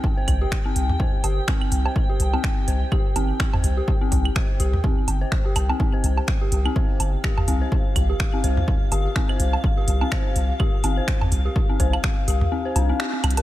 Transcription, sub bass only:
0.28 C2
0.76 C2
1.24 G1
1.72 C2
2.20 C2
2.68 C2
3.16 G1
3.64 C2
4.12 C2
4.60 C2
5.08 G1
5.56 C2
6.04 C2
6.52 C2
7.00 G1
7.48 C2
7.96 C2
8.44 C2
8.92 G1
9.40 C2
9.88 C2
10.36 C2
10.84 G1
11.32 C2
11.80 C2
12.28 C2
12.76 C2
13.24 C2

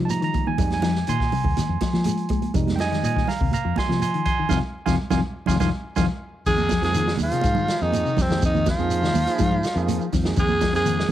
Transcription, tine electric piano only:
Already playing: G3 G#3 D#4
0.05 A5
0.11 A#5
0.24 A#5
0.47 G#5
0.59 G3 G#3 D#4
0.74 G#5
1.09 G#5 C6
2.54 G3 G#3 D#4
2.76 G5
2.80 D#5 G#5
3.04 D#5 G#5
3.28 F5 A#5
3.53 F5 A#5
3.78 G#5 C6
4.02 G#5 C6
4.25 G#5 C6
4.49 F5 G#5 C6
4.86 F5 G#5 C6
5.10 F5 G#5 C6
5.47 F5 G#5 C6
5.60 F5 G#5 C6
5.96 F5 G#5 C6
6.82 F3 A#3 D#4 G#4
7.31 F3 A#3 D#4 G#4
7.81 F3 A#3 D#4 G#4
8.29 F3 A#3 D#4 G#4
8.78 F3 A#3 D#4 G#4
9.27 F3 A#3 D#4 G#4
9.75 F3 A#3 D#4 G#4
10.24 F3 A#3 D#4 G#4
10.73 F3 A#3 D#4 G#4

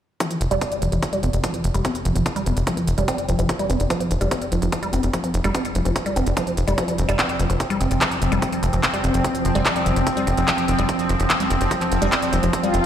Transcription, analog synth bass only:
0.41 F1
0.51 F1
0.82 F1
0.92 F1
1.23 F1
1.33 F1
1.64 F1
1.74 F1
2.05 F1
2.16 F1
2.46 F1
2.57 F1
2.87 F1
2.98 F1
3.29 F1
3.39 F1
3.70 F1
3.80 F1
4.11 F1
4.21 F1
4.52 F1
4.62 F1
4.93 F1
5.03 F1
5.34 F1
5.44 F1
5.75 F1
5.85 F1
6.16 F1
6.27 F1
6.57 F1
6.68 F1
6.98 F1
7.09 F1
7.40 F1
7.50 F1
7.81 F1
7.91 F1
8.22 F1
8.32 F1
8.63 F1
8.73 F1
9.04 F1
9.14 F1
9.45 F1
9.55 F1
9.86 F1
9.96 F1
10.27 F1
10.37 F1
10.68 F1
10.79 F1
11.09 F1
11.20 F1
11.50 F1
11.61 F1
11.92 F1
12.02 F1
12.33 F1
12.43 F1
12.74 F1

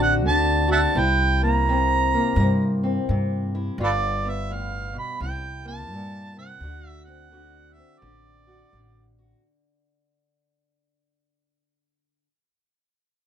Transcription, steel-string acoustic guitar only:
Already playing: D3 C4 F#4
0.26 D3
0.68 F#4
0.96 C3 E4
1.42 A#3
1.69 C3 C4
2.14 A#3
2.40 C3
2.83 C4
3.11 C3
3.55 E4
3.79 G2 F4
4.25 B3
4.50 A2
4.93 B2
5.22 C3 E4
5.65 A#3
5.93 A#2
6.36 C3
6.63 D3 F#4
7.07 C4
7.32 D3 F#4
7.76 C4
8.01 D3
8.47 F#4
8.74 D3
9.18 F#4

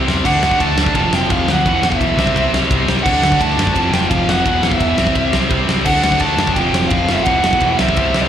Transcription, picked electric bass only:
0.07 E2
0.25 D2
0.43 D2
0.60 D2
0.77 D2
0.94 F1
1.13 F1
1.30 F1
1.47 D2
1.66 E1
1.82 E1
2.01 B1
2.17 C2
2.35 C2
2.53 C2
2.71 C2
2.88 C2
3.06 D2
3.22 D2
3.40 D2
3.57 F#2
3.76 F1
3.92 F1
4.11 F1
4.26 F1
4.46 E1
4.62 E1
4.80 E1
4.98 C2
5.15 C2
5.33 C2
5.50 C2
5.69 C2
5.85 D2
6.03 D2
6.20 D2
6.38 F#2
6.56 F1
6.73 F1
6.91 F1
7.10 F1
7.26 E1
7.44 E1
7.61 E1
7.80 C2
7.97 C2
8.14 C2

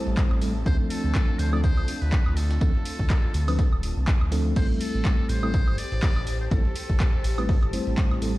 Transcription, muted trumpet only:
Already playing: A4
0.66 C5
0.90 A4
1.39 C5
1.53 D5
1.64 C5
2.02 B4
2.37 A4
4.56 C5
4.81 A4
5.29 C5
5.78 D5
6.41 C5
6.52 A4

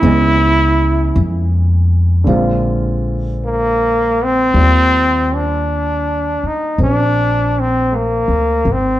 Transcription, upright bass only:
0.03 C#2
1.16 F2
2.27 A#1
4.54 D#2
6.43 muted upright bass stroke
6.78 A#1
8.28 D2
8.65 G#1

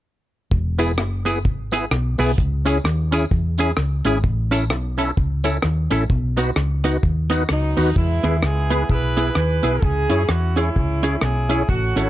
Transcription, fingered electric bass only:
0.52 E1
0.98 F#1
1.45 G#1
1.91 B1
2.19 B1
2.38 C#2
2.84 D#2
3.31 E2
3.77 C#2
4.05 G#1
4.24 A1
4.70 B1
5.17 C#2
5.64 D#2
5.91 A1
6.10 B1
6.56 C#2
7.03 D#2
7.50 C#2
7.78 D#2
7.96 E2
8.24 D#2
8.43 C#2
8.90 B1
9.36 D#2
9.64 B1
9.82 C#2
10.10 F#2
10.29 E2
10.76 C#2
11.22 B1
11.69 A1
11.96 G#1

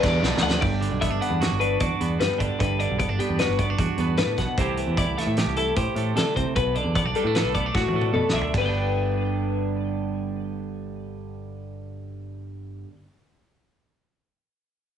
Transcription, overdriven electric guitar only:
Already playing: B2 G3 B3 D4
0.23 B2 G3 B3 D4
0.43 G3 B3 D4

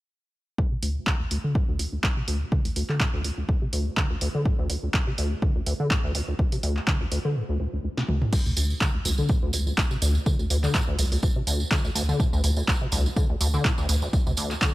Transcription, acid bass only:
0.58 D2
0.72 C3
0.82 D2
0.96 D#2
1.07 D3
1.20 D2
1.31 D2
1.44 D3
1.55 A2
1.68 D2
1.79 D2
1.92 D2
2.03 D2
2.17 C3
2.28 D2
2.41 D#2
2.52 D3
2.65 D2
2.76 D2
2.89 D3
3.00 A2
3.14 D2
3.25 D2
3.38 D2
3.49 D2
3.62 C3
3.73 D2
3.86 D#2
3.97 D3
4.10 D2
4.21 D2
4.35 D3
4.46 A2
4.59 D2
4.70 D2
4.83 D2
4.94 D2
5.07 C3
5.18 D2
5.31 D#2
5.42 D3
5.56 D2
5.66 D2
5.80 D3
5.91 A2
6.04 D2
6.15 D2
6.28 D2
6.39 D2
6.52 C3
6.63 D2
6.76 D#2
6.87 D3
7.01 D2
7.12 D2
7.25 D3
7.36 A2
7.49 D2
7.60 D2
7.73 D2
7.84 D2
7.97 C3
8.08 D2
8.22 D#2
8.33 D2
8.46 C3
8.57 D2
8.70 D#2
8.81 D3
8.94 D2
9.05 D2
9.18 D3
9.29 A2
9.43 D2
9.54 D2
9.67 D2
9.78 D2
9.91 C3
10.02 D2
10.15 D#2
10.26 D3
10.39 D2
10.50 D2
10.63 D3
10.74 A2
10.88 D2
10.99 D2
11.12 D2
11.23 D2
11.36 C3
11.47 D2
11.60 D#2
11.71 D3
11.84 D2
11.95 D2
12.09 D3
12.20 A2
12.33 D2
12.44 D2
12.57 D2
12.68 D2
12.81 C3
12.92 D2
13.05 D#2
13.16 D3
13.30 D2
13.41 D2
13.54 D3
13.65 A2
13.78 D2
13.89 D2
14.02 D2
14.13 D2
14.27 C3
14.37 D2
14.51 D#2
14.62 D3

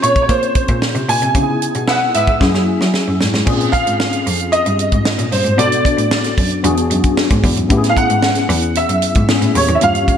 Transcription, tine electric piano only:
Already playing: C4 C#4 F4 G#4
1.34 B3 D#4 E4 G4
1.42 G#4
2.40 A#3 C#4 E4 G#4
3.45 C4 C#4 F4 G#4
5.57 B3 D4 F#4 A4
6.63 B3 D4 F#4 G#4
7.69 B3 C#4 E4 G4
7.77 G#4
9.29 B3 C#4 E4 G#4
9.81 A#3 C#4 F4 G4

